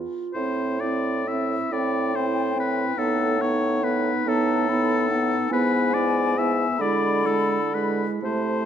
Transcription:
0.00 0.34 F4 soft
0.34 1.57 A2 soft
0.34 0.81 C4 soft
0.34 0.81 E4 soft
0.34 0.82 C5 medium
0.80 1.27 C4 soft
0.80 1.27 E4 soft
0.80 1.29 D5 soft
1.27 1.72 C4 soft
1.27 1.71 E4 soft
1.27 1.74 E5 medium
1.71 2.84 A2 soft
1.71 2.15 C4 soft
1.71 2.14 E4 soft
1.71 2.17 D5 medium
1.71 2.99 G5 soft
2.15 2.56 C4 soft
2.15 2.56 E4 soft
2.15 2.57 C5 medium
2.56 2.97 C4 soft
2.56 2.97 E4 soft
2.56 3.00 B4 medium
2.97 4.11 A2 soft
2.97 3.39 B3 soft
2.97 3.40 D#4 soft
2.97 3.43 A4 medium
2.97 4.29 F#5 soft
3.39 3.82 B3 soft
3.39 3.83 D#4 soft
3.39 3.85 C#5 medium
3.83 4.25 B3 soft
3.83 4.26 D#4 soft
3.83 4.30 B4 medium
4.26 5.37 A2 medium
4.26 4.68 B3 soft
4.26 4.69 D#4 medium
4.26 5.52 A4 medium
4.26 4.70 A5 medium
4.69 5.10 B3 soft
4.69 5.10 D#4 soft
4.69 5.09 B5 medium
5.09 5.51 B3 soft
5.09 5.50 D#4 soft
5.09 5.51 F#5 soft
5.50 6.65 G#2 medium
5.50 5.93 B3 medium
5.50 5.93 E4 medium
5.50 5.95 B4 medium
5.50 6.80 G#5 medium
5.94 6.37 B3 soft
5.94 6.37 E4 soft
5.94 6.39 D5 medium
6.38 6.80 B3 soft
6.38 6.68 E4 soft
6.38 6.83 E5 medium
6.78 8.04 D3 medium
6.78 7.25 G#3 soft
6.78 7.24 E4 soft
6.78 7.28 D5 medium
6.78 7.90 B5 medium
7.25 7.59 G#3 soft
7.25 7.72 E4 soft
7.25 7.76 A4 medium
7.72 8.21 G#3 soft
7.72 8.22 E4 soft
7.72 8.10 B4 soft
8.22 8.65 C3 soft
8.22 8.65 A3 soft
8.22 8.65 E4 soft
8.22 8.65 C5 medium
8.22 8.65 A5 soft

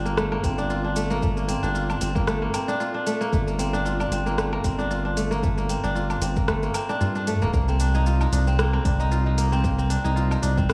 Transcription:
0.00 0.37 G1 loud
0.00 0.43 C4 medium
0.00 0.58 D4 medium
0.00 0.70 F4 medium
0.05 0.23 A#3 medium
0.05 shaker soft
0.17 0.38 A3 medium
0.17 cross-stick medium
0.17 shaker soft
0.32 1.02 A#3 medium
0.32 low woodblock medium
0.43 1.55 G1 medium
0.43 1.48 C4 medium
0.43 kick loud
0.43 open hi-hat medium
0.43 shaker medium
0.58 0.84 D4 loud
0.58 shaker soft
0.70 1.74 F4 medium
0.70 shaker soft
0.84 1.62 D4 medium
0.96 1.16 A3 medium
0.96 open hi-hat medium
0.96 shaker medium
1.10 1.28 A#3 loud
1.10 shaker soft
1.22 1.43 A3 medium
1.22 kick loud
1.22 shaker soft
1.37 2.15 A#3 medium
1.37 shaker soft
1.48 2.01 C4 medium
1.48 open hi-hat medium
1.48 shaker medium
1.63 1.95 G1 medium
1.63 1.89 D4 medium
1.63 shaker soft
1.75 2.80 F4 medium
1.75 shaker soft
1.90 2.68 D4 medium
1.90 low woodblock medium
1.90 shaker soft
2.01 2.48 G1 loud
2.01 2.53 C4 medium
2.01 open hi-hat medium
2.01 shaker medium
2.15 2.33 A#3 medium
2.15 kick loud
2.15 shaker soft
2.27 2.48 A3 medium
2.27 cross-stick medium
2.27 shaker soft
2.42 3.12 A#3 medium
2.54 3.58 C4 medium
2.54 open hi-hat medium
2.54 low woodblock medium
2.54 shaker medium
2.68 2.94 D4 medium
2.68 shaker soft
2.80 3.85 F4 medium
2.80 shaker soft
2.94 3.73 D4 medium
3.06 3.27 A3 medium
3.06 open hi-hat medium
3.06 shaker medium
3.21 3.39 A#3 loud
3.21 shaker soft
3.33 4.05 G1 loud
3.33 3.53 A3 medium
3.33 kick loud
3.33 shaker soft
3.47 4.26 A#3 medium
3.47 shaker soft
3.59 4.12 C4 medium
3.59 open hi-hat medium
3.59 shaker medium
3.73 3.99 D4 medium
3.73 shaker soft
3.85 4.90 F4 medium
3.85 shaker soft
4.00 4.78 D4 medium
4.00 low woodblock medium
4.00 shaker soft
4.11 4.58 G1 loud
4.11 4.64 C4 medium
4.11 open hi-hat medium
4.11 shaker medium
4.26 4.44 A#3 medium
4.26 shaker soft
4.38 4.59 A3 medium
4.38 cross-stick medium
4.38 shaker soft
4.53 5.23 A#3 medium
4.53 low woodblock medium
4.64 5.76 G1 medium
4.64 5.69 C4 medium
4.64 kick loud
4.64 open hi-hat medium
4.64 shaker medium
4.78 5.05 D4 medium
4.78 shaker soft
4.91 5.95 F4 medium
4.91 shaker soft
5.05 5.83 D4 medium
5.17 5.37 A3 medium
5.17 open hi-hat medium
5.17 shaker medium
5.31 5.49 A#3 loud
5.31 shaker soft
5.43 5.64 A3 medium
5.43 kick loud
5.43 shaker soft
5.58 6.36 A#3 medium
5.58 shaker soft
5.69 6.22 C4 medium
5.69 open hi-hat medium
5.69 shaker medium
5.84 6.16 G1 medium
5.84 6.10 D4 medium
5.84 shaker soft
5.95 7.00 F4 medium
5.95 shaker soft
6.10 6.89 D4 medium
6.10 low woodblock medium
6.10 shaker soft
6.21 6.68 G1 loud
6.21 6.74 C4 medium
6.21 open hi-hat loud
6.21 shaker medium
6.36 6.54 A#3 medium
6.36 kick loud
6.36 shaker soft
6.48 6.69 A3 medium
6.48 kick medium
6.48 cross-stick medium
6.48 shaker soft
6.63 7.33 A#3 medium
6.63 shaker soft
6.74 7.68 C4 medium
6.74 open hi-hat medium
6.74 low woodblock medium
6.74 shaker medium
6.89 7.15 D4 loud
6.89 shaker soft
7.01 7.34 G2 medium
7.01 8.06 F4 medium
7.01 shaker soft
7.15 7.80 D4 medium
7.15 shaker soft
7.27 7.48 A3 medium
7.27 open hi-hat medium
7.27 shaker medium
7.42 7.50 D1 medium
7.42 7.53 A#3 loud
7.42 shaker soft
7.54 8.26 C2 medium
7.54 8.58 A#3 medium
7.54 kick loud
7.54 shaker soft
7.68 8.47 C4 medium
7.68 shaker soft
7.80 8.01 D4 medium
7.80 open hi-hat medium
7.80 shaker medium
7.95 8.21 D#4 loud
7.95 shaker soft
8.06 9.11 F4 medium
8.06 shaker soft
8.21 8.39 D#4 medium
8.21 low woodblock medium
8.21 shaker soft
8.32 8.79 C2 loud
8.32 8.85 D4 medium
8.32 open hi-hat medium
8.32 shaker medium
8.47 8.73 C4 medium
8.47 shaker soft
8.59 9.37 A#3 medium
8.59 cross-stick medium
8.59 shaker soft
8.73 9.52 C4 medium
8.73 low woodblock medium
8.85 9.97 C2 medium
8.85 9.06 D4 medium
8.85 kick loud
8.85 open hi-hat medium
8.85 shaker medium
9.00 9.26 D#4 loud
9.00 shaker soft
9.11 10.16 F4 medium
9.11 shaker soft
9.26 9.96 D#4 medium
9.38 9.64 A#3 medium
9.38 open hi-hat loud
9.38 shaker medium
9.52 9.78 C4 medium
9.52 shaker soft
9.64 10.68 A#3 medium
9.64 kick loud
9.64 shaker soft
9.78 10.57 C4 medium
9.78 shaker soft
9.90 10.10 D4 medium
9.90 open hi-hat medium
9.90 shaker medium
10.04 10.37 C2 medium
10.04 10.30 D#4 medium
10.04 shaker soft
10.16 10.73 F4 medium
10.16 shaker soft
10.31 10.48 D#4 medium
10.31 low woodblock medium
10.31 shaker soft
10.42 10.73 C2 loud
10.42 10.73 D4 medium
10.42 open hi-hat medium
10.42 shaker medium
10.57 10.73 C4 medium
10.57 kick loud
10.57 shaker soft
10.69 10.73 A#3 medium
10.69 cross-stick medium
10.69 shaker soft

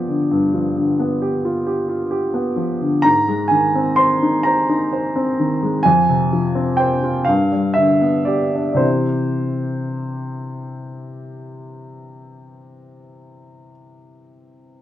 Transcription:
0.00 0.27 G2 soft
0.00 0.22 F3 soft
0.00 0.99 B3 soft
0.00 1.45 F4 soft
0.00 1.22 G4 soft
0.00 2.58 D5 medium
0.09 0.45 D3 soft
0.31 3.02 G2 soft
0.54 0.91 F3 soft
0.77 1.14 D3 soft
0.99 1.36 B3 soft
1.22 1.58 G4 soft
1.45 1.81 F4 soft
1.67 2.03 G4 soft
1.89 2.26 F4 soft
2.11 2.49 G4 soft
2.34 2.72 B3 soft
2.56 2.95 F3 soft
2.81 3.05 D3 soft
3.02 5.80 G#2 medium
3.02 3.51 A#5 medium
3.28 3.66 G#3 soft
3.48 3.89 D#3 soft
3.48 3.97 G#5 medium
3.75 4.13 C4 soft
3.96 4.37 C5 soft
3.96 4.45 C6 medium
4.23 4.60 D#4 medium
4.43 4.84 C5 medium
4.43 5.83 A#5 medium
4.69 5.06 D#4 soft
4.93 5.29 C5 soft
5.16 5.52 C4 soft
5.40 5.76 D#3 medium
5.63 5.85 G#3 soft
5.83 7.25 F2 medium
5.83 6.79 G#5 medium
6.09 6.46 C3 soft
6.33 6.71 F3 soft
6.55 6.94 C4 soft
6.77 7.19 C5 soft
6.77 7.27 G5 medium
7.04 7.28 F4 soft
7.25 8.77 G2 medium
7.25 7.76 F5 medium
7.52 7.93 G3 soft
7.74 8.18 D3 soft
7.74 8.27 E5 medium
8.02 8.44 B3 soft
8.25 8.70 G4 soft
8.25 8.71 D5 medium
8.55 8.81 D4 soft
8.73 14.82 C3 soft
8.73 14.82 E3 soft
8.73 13.69 C5 medium
8.73 8.81 D5 soft
8.77 14.82 C4 soft
8.77 14.82 G4 soft

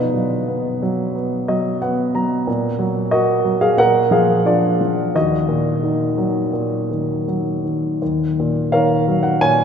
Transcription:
0.00 2.44 B2 soft
0.00 1.78 D#4 soft
0.00 1.76 B4 medium
0.14 0.81 F#3 soft
0.48 1.14 B3 soft
0.82 1.47 F#3 medium
1.15 1.80 B3 soft
1.48 2.13 F#3 soft
1.48 1.79 D#5 medium
1.82 2.45 B3 medium
1.82 2.13 F#5 medium
2.14 2.46 F#3 soft
2.14 2.45 A#5 medium
2.47 3.74 A#2 medium
2.79 3.43 F#3 soft
3.11 3.76 A#3 soft
3.11 3.59 F#4 medium
3.11 3.63 D#5 medium
3.44 3.77 F#3 soft
3.61 3.77 G#4 medium
3.61 3.79 F5 medium
3.77 5.11 A#2 soft
3.77 4.10 A#4 medium
3.77 4.13 F#5 medium
4.11 4.79 F3 medium
4.11 4.44 G#4 medium
4.11 4.44 F5 medium
4.46 5.13 D4 medium
4.46 5.12 F4 soft
4.46 5.17 D5 medium
4.81 5.14 F3 soft
5.15 7.97 D#2 medium
5.15 7.25 F#4 soft
5.15 7.25 D#5 medium
5.48 6.52 A#2 soft
5.83 6.90 D#3 soft
6.18 7.26 F#3 soft
6.53 7.96 A#2 soft
6.91 7.63 D#3 soft
7.28 7.99 F#3 soft
7.64 8.00 D#3 soft
8.02 9.64 D#2 soft
8.40 9.40 A#2 soft
8.72 9.64 D#3 soft
8.72 9.64 A#4 medium
8.72 9.41 C#5 medium
8.72 9.21 F5 medium
9.08 9.64 F#3 medium
9.23 9.40 F#5 medium
9.41 9.64 A#2 soft
9.41 9.64 C#5 medium
9.41 9.64 G#5 medium

